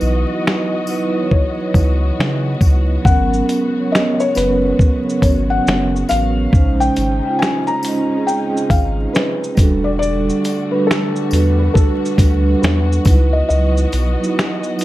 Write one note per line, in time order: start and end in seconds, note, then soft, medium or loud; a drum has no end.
0.00 0.25 B1 medium
0.00 3.01 E3 medium
0.00 0.11 F#3 medium
0.00 6.49 B3 medium
0.00 0.12 D#4 medium
0.00 0.13 E4 medium
0.00 6.49 F#4 medium
0.00 0.14 B4 medium
0.00 1.37 D#5 loud
0.00 3.01 D#5 medium
0.00 tambourine soft
0.29 0.82 F#3 medium
0.29 0.83 D#4 medium
0.29 0.84 E4 medium
0.35 0.85 F#4 medium
0.47 finger snap loud
0.47 snare loud
0.85 1.11 F#3 medium
0.85 1.12 D#4 medium
0.85 1.13 E4 medium
0.85 tambourine medium
0.91 1.14 B4 medium
1.14 2.62 F#3 medium
1.14 2.63 D#4 medium
1.18 2.64 E4 medium
1.18 2.65 C#5 medium
1.31 2.58 C#5 medium
1.31 kick medium
1.74 2.11 C#2 medium
1.74 kick medium
1.74 tambourine soft
2.19 2.56 C#3 medium
2.19 finger snap medium
2.19 snare loud
2.61 2.98 C#2 medium
2.61 kick medium
2.61 tambourine medium
3.03 3.42 G#1 loud
3.03 9.53 C#3 medium
3.03 3.65 F#3 medium
3.03 6.49 G#3 medium
3.03 3.66 B3 medium
3.03 3.67 C#4 medium
3.03 3.95 F#5 loud
3.03 kick loud
3.07 3.68 A#4 loud
3.07 shaker medium
3.34 shaker soft
3.49 closed hi-hat medium
3.49 tambourine soft
3.49 shaker soft
3.75 4.29 F#3 medium
3.75 4.30 B3 medium
3.75 4.31 C#4 medium
3.80 4.32 C#5 medium
3.92 4.13 D#5 medium
3.92 finger snap loud
3.92 snare loud
3.92 shaker medium
4.14 4.21 D#5 medium
4.20 4.36 C#5 medium
4.20 shaker soft
4.34 4.73 F#1 medium
4.34 5.14 F#3 medium
4.34 5.15 B3 medium
4.34 5.16 C#4 medium
4.34 5.25 B4 loud
4.34 closed hi-hat medium
4.34 tambourine medium
4.34 shaker medium
4.40 4.46 B4 medium
4.47 5.21 C#5 medium
4.79 kick medium
4.79 shaker medium
5.10 shaker soft
5.21 5.59 G#1 medium
5.21 6.41 F#3 medium
5.21 6.42 B3 medium
5.21 5.49 C#5 medium
5.21 kick medium
5.21 closed hi-hat medium
5.21 tambourine soft
5.21 shaker soft
5.25 6.43 C#4 medium
5.25 6.44 F#4 medium
5.50 6.11 F#5 loud
5.67 6.03 F#1 medium
5.67 finger snap medium
5.67 snare loud
5.67 shaker medium
5.96 shaker soft
6.09 6.47 A1 medium
6.09 6.83 F5 loud
6.09 closed hi-hat medium
6.09 tambourine medium
6.09 shaker medium
6.51 6.90 A#1 loud
6.51 7.13 G#3 medium
6.51 9.54 G#3 medium
6.51 7.14 C#4 medium
6.51 9.54 C#4 medium
6.51 9.54 D#4 medium
6.51 7.15 D#4 medium
6.51 kick loud
6.51 shaker medium
6.57 7.16 C5 loud
6.80 7.41 G5 loud
6.80 shaker soft
6.96 7.21 G#1 medium
6.96 closed hi-hat medium
6.96 tambourine soft
6.96 shaker soft
7.23 7.77 G#3 medium
7.23 7.78 C#4 medium
7.23 7.79 D#4 medium
7.29 7.80 F4 medium
7.39 7.68 G#5 loud
7.39 finger snap loud
7.39 snare loud
7.43 shaker medium
7.67 8.28 A#5 loud
7.67 shaker soft
7.82 8.07 G#3 medium
7.82 8.08 C#4 medium
7.82 closed hi-hat medium
7.82 tambourine medium
7.82 shaker medium
7.86 8.09 D#4 medium
7.86 8.10 D#5 medium
8.10 9.57 G#3 medium
8.10 8.16 C4 medium
8.10 9.59 D#4 medium
8.16 9.61 C#4 medium
8.16 9.60 G#4 medium
8.27 8.72 G5 loud
8.27 shaker medium
8.57 shaker soft
8.70 9.07 G#1 medium
8.70 9.11 F5 medium
8.70 kick medium
8.70 closed hi-hat medium
8.70 tambourine soft
8.70 shaker soft
9.13 9.81 B4 medium
9.13 finger snap loud
9.13 snare loud
9.13 shaker medium
9.44 shaker soft
9.55 10.31 E1 loud
9.55 13.02 D3 medium
9.55 10.54 G3 medium
9.55 13.02 G3 medium
9.55 13.02 A3 medium
9.55 10.55 D4 medium
9.55 14.85 F#4 medium
9.55 10.56 F#4 medium
9.55 kick loud
9.55 closed hi-hat medium
9.55 tambourine medium
9.55 shaker medium
9.61 10.57 A4 medium
9.84 9.89 D5 medium
9.99 10.67 D5 loud
9.99 shaker medium
10.30 shaker soft
10.44 closed hi-hat medium
10.44 tambourine soft
10.44 shaker soft
10.71 11.25 G3 medium
10.71 11.26 D4 medium
10.71 10.88 B4 medium
10.76 11.27 F#4 medium
10.76 11.28 B4 medium
10.87 11.61 A4 loud
10.87 finger snap loud
10.91 snare loud
10.91 shaker medium
11.16 shaker soft
11.28 12.09 G3 medium
11.28 12.10 D4 medium
11.28 tambourine medium
11.32 11.69 E2 medium
11.32 12.11 F#4 medium
11.32 12.12 B4 medium
11.32 closed hi-hat medium
11.32 shaker medium
11.59 11.73 B4 medium
11.74 12.57 A4 medium
11.74 kick medium
11.74 shaker medium
12.05 shaker soft
12.17 12.55 D2 medium
12.17 13.05 G3 medium
12.17 13.06 D4 medium
12.17 13.07 F#4 medium
12.17 kick medium
12.17 closed hi-hat medium
12.17 tambourine medium
12.17 shaker soft
12.23 13.08 B4 medium
12.62 12.99 E2 medium
12.62 13.29 B4 medium
12.62 finger snap loud
12.62 snare loud
12.62 shaker medium
12.92 shaker soft
13.04 13.42 C#2 loud
13.04 14.03 F#3 medium
13.04 14.85 F#3 medium
13.04 14.85 B3 medium
13.04 14.04 D#4 medium
13.04 14.85 D#5 medium
13.04 kick loud
13.04 closed hi-hat medium
13.04 tambourine medium
13.04 shaker medium
13.08 14.05 E4 medium
13.08 14.06 B4 medium
13.33 13.47 D#5 medium
13.49 13.86 C#2 loud
13.49 14.85 D#5 loud
13.49 shaker medium
13.77 shaker soft
13.92 14.17 B1 medium
13.92 closed hi-hat medium
13.92 tambourine soft
13.92 shaker soft
14.20 14.73 F#3 medium
14.20 14.74 D#4 medium
14.20 shaker soft
14.24 14.76 E4 medium
14.24 14.76 F#4 medium
14.39 finger snap medium
14.39 snare loud
14.39 shaker medium
14.64 shaker soft
14.77 14.85 F#3 medium
14.77 14.85 D#4 medium
14.77 14.85 E4 medium
14.77 tambourine medium
14.81 closed hi-hat medium
14.81 shaker medium